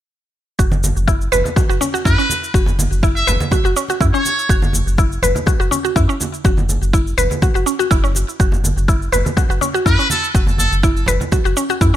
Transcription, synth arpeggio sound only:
0.59 0.71 F#4 medium
1.08 1.15 E4 loud
1.32 1.44 B4 loud
1.56 1.68 F#4 medium
1.69 1.80 F#4 medium
1.81 1.88 C#4 medium
1.94 2.05 F#4 medium
2.05 2.12 E4 loud
2.18 2.24 C#4 medium
2.54 2.66 F#4 medium
3.03 3.10 E4 loud
3.27 3.40 B4 loud
3.52 3.64 F#4 medium
3.65 3.76 F#4 medium
3.76 3.83 C#4 medium
3.90 4.00 F#4 medium
4.01 4.08 E4 medium
4.14 4.20 C#4 medium
4.49 4.61 F#4 medium
4.98 5.05 E4 loud
5.23 5.35 B4 loud
5.47 5.58 F#4 medium
5.60 5.71 F#4 medium
5.71 5.78 C#4 medium
5.85 5.95 F#4 medium
5.96 6.03 E4 loud
6.09 6.15 C#4 medium
6.45 6.56 F#4 medium
6.93 7.00 E4 medium
7.18 7.30 B4 loud
7.42 7.54 F#4 medium
7.55 7.66 F#4 medium
7.66 7.73 C#4 medium
7.79 7.90 F#4 medium
7.91 7.98 E4 medium
8.04 8.10 C#4 medium
8.40 8.51 F#4 medium
8.88 8.95 E4 loud
9.12 9.25 B4 medium
9.37 9.49 F#4 medium
9.50 9.61 F#4 medium
9.61 9.68 C#4 medium
9.74 9.85 F#4 medium
9.86 9.93 E4 loud
9.99 10.05 C#4 medium
10.35 10.46 F#4 medium
10.83 10.90 E4 loud
11.08 11.20 B4 medium
11.32 11.44 F#4 medium
11.45 11.56 F#4 medium
11.57 11.64 C#4 medium
11.70 11.81 F#4 medium
11.81 11.88 E4 loud

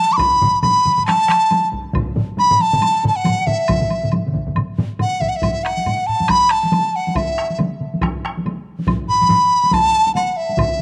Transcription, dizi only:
0.00 0.14 A5 medium
0.13 0.61 B5 medium
0.13 0.18 D6 medium
0.62 1.04 B5 medium
1.06 1.68 A5 medium
2.39 2.63 B5 medium
2.61 3.07 A5 medium
3.08 3.18 A5 medium
3.16 3.48 F#5 medium
3.47 4.13 E5 medium
5.01 5.22 F#5 medium
5.21 5.30 E5 medium
5.29 5.38 F#5 medium
5.36 5.65 E5 medium
5.64 6.08 F#5 medium
6.07 6.32 A5 medium
6.30 6.53 B5 medium
6.51 6.97 A5 medium
6.96 7.18 F#5 medium
7.16 7.59 E5 medium
9.09 9.75 B5 medium
9.73 10.14 A5 medium
10.15 10.33 F#5 medium
10.33 10.82 E5 medium
10.33 10.38 F#5 soft

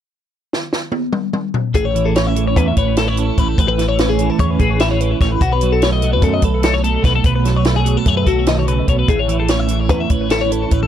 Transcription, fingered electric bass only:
1.74 2.56 A1 medium
2.56 2.74 E2 medium
2.76 3.30 A1 medium
3.38 3.55 A1 medium
3.58 4.29 A1 medium
4.39 4.57 E2 medium
4.59 5.13 A1 medium
5.20 5.38 A1 medium
5.41 6.22 B1 medium
6.22 6.40 F#2 medium
6.42 6.96 B1 medium
7.04 7.22 B1 medium
7.24 7.96 B1 medium
8.05 8.24 F#2 medium
8.26 8.80 B1 medium
8.87 9.05 B1 medium
9.08 9.89 A1 medium
9.89 10.08 E2 medium
10.10 10.64 A1 medium
10.71 10.87 A1 medium

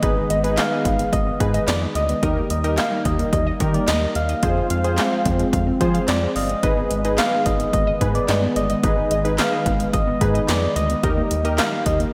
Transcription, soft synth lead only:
0.03 0.59 D#5 loud
0.58 1.12 F5 loud
1.13 1.64 D#5 loud
1.68 1.80 D5 medium
1.96 2.47 D#5 loud
2.50 2.79 D#5 loud
2.78 3.07 F5 loud
3.05 3.32 D#5 loud
3.33 3.76 D#5 loud
3.74 3.90 D5 medium
3.88 4.15 D#5 loud
4.16 4.67 F5 loud
4.71 5.77 F5 loud
6.08 6.38 D5 loud
6.36 7.20 D#5 loud
7.18 7.48 F5 loud
7.46 7.73 D#5 loud
7.74 8.16 D#5 loud
8.15 8.56 D5 loud
8.56 8.82 D#5 loud
8.84 9.40 D#5 loud
9.39 9.95 F5 loud
9.94 10.48 D#5 loud
10.49 10.78 D5 loud
10.76 11.58 D#5 loud
11.59 11.84 F5 loud
11.86 11.99 D#5 medium

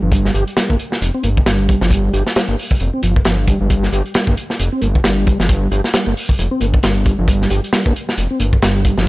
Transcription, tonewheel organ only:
0.02 0.11 F3 medium
0.12 0.33 G3 medium
0.34 0.44 G4 medium
0.57 0.68 G3 medium
0.69 0.77 A#3 medium
1.14 1.23 C4 loud
1.24 1.30 A#3 medium
1.46 1.67 G3 medium
1.69 1.80 G3 loud
1.82 1.90 F3 medium
1.91 2.12 G3 medium
2.13 2.23 G4 medium
2.36 2.47 G3 medium
2.49 2.56 A#3 medium
2.93 3.02 C4 loud
3.03 3.15 F3 medium
3.25 3.37 F3 medium
3.48 3.59 G3 medium
3.61 3.68 G3 medium
3.70 3.92 G3 medium
3.92 4.02 G4 medium
4.15 4.26 G3 medium
4.28 4.35 A#3 medium
4.72 4.81 C4 loud
4.82 4.88 A#3 medium
5.04 5.25 G3 medium
5.26 5.38 G3 loud
5.39 5.48 F3 medium
5.49 5.70 G3 medium
5.71 5.81 G4 medium
5.94 6.05 G3 medium
6.07 6.14 A#3 medium
6.51 6.60 C4 loud
6.61 6.67 A#3 medium
6.83 7.04 G3 medium
7.06 7.17 G3 loud
7.19 7.27 F3 medium
7.28 7.50 G3 medium
7.50 7.61 G4 medium
7.73 7.85 G3 medium
7.86 7.93 A#3 medium
8.30 8.39 C4 loud
8.40 8.46 A#3 medium
8.62 8.83 G3 medium
8.85 8.96 G3 loud
8.98 9.06 F3 medium

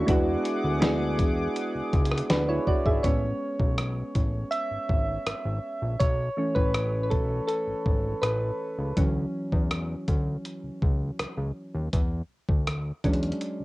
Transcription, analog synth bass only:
0.08 0.37 E2 loud
0.64 1.21 D2 loud
1.19 1.48 E2 medium
1.75 1.82 C#2 soft
1.93 2.22 C#2 loud
2.30 2.59 D2 loud
2.86 3.00 G#1 medium
3.04 3.33 A1 loud
3.60 4.03 B1 medium
4.15 4.44 A1 medium
4.71 4.78 G#1 soft
4.90 5.18 G#1 medium
5.27 5.34 G#1 soft
5.45 5.60 G#1 medium
5.82 5.97 A#1 medium
6.01 6.29 B1 loud
6.56 7.13 A1 loud
7.12 7.41 B1 medium
7.67 7.75 G#1 soft
7.86 8.15 G#1 medium
8.23 8.52 A1 medium
8.79 8.93 C#2 medium
8.97 9.26 D2 loud
9.53 9.96 E2 medium
10.08 10.37 D2 medium
10.64 10.71 C#2 soft
10.82 11.11 C#2 medium
11.19 11.26 C#2 soft
11.37 11.52 C#2 medium
11.74 11.89 D#2 medium
11.93 12.22 E2 loud
12.49 12.92 D2 medium
13.04 13.33 E2 medium
13.60 13.65 C#2 soft

